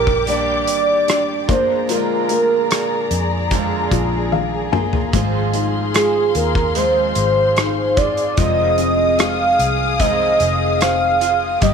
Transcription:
Already playing: A#1 G3 A#3 D4 G4 A#4 D5 D6
0.07 kick
0.26 G2 D#3 G3 A#3 D4 G4 D5, closed hi-hat
0.67 G1, closed hi-hat
1.08 D4, cross-stick, closed hi-hat
1.48 A#1 F3 G#3 A#3 D4 F4 G#4 C5 D5 A#5, kick, closed hi-hat
1.87 A#2 D3 F3 G#3 F4 A#4, closed hi-hat
1.92 D4 F4
2.29 A#3, closed hi-hat
2.71 cross-stick, closed hi-hat
3.11 F2, closed hi-hat
3.51 A#2 D3 F3 G#3 D4 F4, kick, closed hi-hat
3.91 A#1 F4, kick, closed hi-hat
4.32 F5, high tom
4.72 F3 G#3 A#3 D4 F4 G#5, mid tom
4.93 floor tom
5.12 G#1 G#2 D#3 F3 G#3 C4 F4 F5 C6, kick, closed hi-hat
5.54 D#4, closed hi-hat
5.93 F3 G#3 C4 F4 G#4, cross-stick, closed hi-hat
6.35 D#2 A#4, closed hi-hat
6.55 kick
6.75 G#2 D#3 F3 G#3 C4 F4 C5, closed hi-hat
7.15 G#1, closed hi-hat
7.56 D#4, cross-stick, closed hi-hat
7.96 F3 G#3 C4 F4 D5, kick, closed hi-hat
8.17 closed hi-hat
8.36 F1 F2 C3 D#3 F3 G#3 C4 F4 G#4 D#5 F5 D#6, kick, closed hi-hat
8.78 C4, closed hi-hat
9.18 D#3 G#3 C4 F4 G#4 F5, cross-stick, closed hi-hat
9.59 C2, closed hi-hat
9.99 F2 C3 D#3 G#3 C4 F4 D#5, kick, closed hi-hat
10.40 F1, closed hi-hat
10.81 C5 F5, cross-stick, closed hi-hat
11.20 D#3 G#3 C4 F4, closed hi-hat
11.61 G1 G2 D#3 G3 A#3 G4 D#5 G5 D6, kick, closed hi-hat
11.66 G4

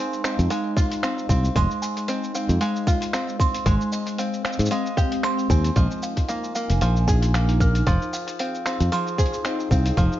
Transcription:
Already playing: G#3 C4 D#4 F5 G#5
0.13 cabasa
0.24 C4 D#5, finger snap, cabasa
0.39 F2, closed hi-hat, cabasa
0.50 G#3 F5, closed hi-hat, cabasa
0.77 F4 F5, kick, cabasa
0.92 closed hi-hat, cabasa
1.03 C4 F5, finger snap, closed hi-hat, cabasa
1.18 cabasa
1.29 C2 C4 F5, kick, cabasa
1.45 cabasa
1.56 F1 G#3 C6, kick, closed hi-hat, cabasa
1.71 cabasa
1.82 G#5, cabasa
1.97 closed hi-hat, cabasa
2.08 C4 D#5, closed hi-hat, cabasa
2.23 cabasa
2.35 C4 F5, cabasa
2.49 F2, closed hi-hat, cabasa
2.61 G#3 F5, closed hi-hat, cabasa
2.76 cabasa
2.87 F4 F5, kick, cabasa
3.02 closed hi-hat, cabasa
3.13 C4 F5, finger snap, closed hi-hat, cabasa
3.29 cabasa
3.39 C4 C6, kick, cabasa
3.54 closed hi-hat, cabasa
3.66 G#1 G#3 C4 G#5, kick, closed hi-hat, cabasa
3.81 cabasa
3.92 D#5, cabasa
4.07 closed hi-hat, cabasa
4.18 C4 F5, closed hi-hat, cabasa
4.34 cabasa
4.45 C4 F5, finger snap, cabasa
4.52 cabasa
4.59 G#2, closed hi-hat, cabasa
4.66 cabasa
4.71 G#3 F5, closed hi-hat
4.86 cabasa
4.97 G4 F5, kick, cabasa
5.12 closed hi-hat
5.23 C4 C6, finger snap, closed hi-hat, cabasa
5.39 cabasa
5.50 D#2 C4 G#5, kick, cabasa
5.64 closed hi-hat, cabasa
5.76 A#1 F3 D#4 A#4 D#5 G#5, kick, closed hi-hat, cabasa
5.91 cabasa
6.03 F5, cabasa
6.17 kick, closed hi-hat, cabasa
6.29 A#3 F5, closed hi-hat, cabasa
6.44 cabasa
6.55 A#3 F5, cabasa
6.70 F1, closed hi-hat, cabasa
6.81 A#1 F3 F5, closed hi-hat, cabasa
6.96 cabasa
7.08 G#4 G#5, kick, cabasa
7.22 closed hi-hat, cabasa
7.34 A#3 F5, finger snap, closed hi-hat, cabasa
7.49 closed hi-hat, cabasa
7.60 A#3 F6, kick, cabasa
7.75 closed hi-hat, cabasa
7.87 F1 F3 D#4 G#4 F5, kick, closed hi-hat, cabasa
8.02 cabasa
8.13 F5, cabasa
8.28 closed hi-hat, cabasa
8.39 C4 F5, closed hi-hat, cabasa
8.55 cabasa
8.66 C4 F5, finger snap, cabasa
8.80 F2, closed hi-hat, cabasa
8.92 F3 C6, closed hi-hat, cabasa
9.07 cabasa
9.18 G#4 C5, kick, cabasa
9.26 closed hi-hat
9.34 cabasa
9.45 C4 D#5, finger snap, closed hi-hat, cabasa
9.60 cabasa
9.71 C2 C4 F5, kick, cabasa
9.86 closed hi-hat, cabasa
9.97 F1 F3 F5, kick, closed hi-hat, cabasa
10.12 cabasa

